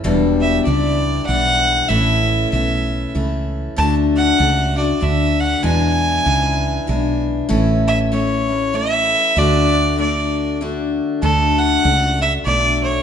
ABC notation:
X:1
M:3/4
L:1/8
Q:"Swing" 1/4=97
K:D
V:1 name="Fiddle"
z e d2 f2 | e2 e2 z2 | a f2 d e f | ^g4- g z |
z e c2 e2 | d2 d2 z2 | A f2 e d c |]
V:2 name="Steel-string acoustic guitar"
[E,,B,,E,G,DE]2 [E,G,DE]2 [E,G,DE]2 | [A,,E,A,CE]2 [E,A,CE]2 [E,A,CE]2 | [D,A,DF]2 [A,DF] [A,DF] [D,A,DF]2 | [E,,B,,E,^G,DE]2 [E,G,DE]2 [E,G,DE]2 |
[A,,E,A,CE]2 [E,A,CE] [A,CE] [E,A,CE]2 | [D,A,DF]2 [D,A,DF]2 [D,A,DF]2 | [D,A,DF]2 [A,DF]2 [D,A,DF]2 |]
V:3 name="Fretless electric bass" clef=bass
E,,,2 C,,2 B,,,2 | A,,,2 B,,,2 C,,2 | D,,2 C,,2 D,,2 | E,,2 C,,2 B,,,2 |
A,,,6 | D,,6 | D,,2 C,,2 B,,,2 |]